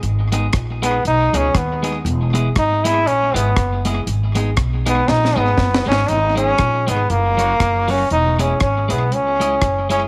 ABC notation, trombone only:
X:1
M:4/4
L:1/16
Q:"Swing" 1/4=119
K:G#m
V:1 name="Trombone"
z6 B,2 D2 C2 B,3 z | z4 D2 E2 C2 B,4 z2 | z6 B,2 D2 B,4 C2 | D2 C4 B,2 A,6 C2 |
D2 C2 C2 B,2 C6 C2 |]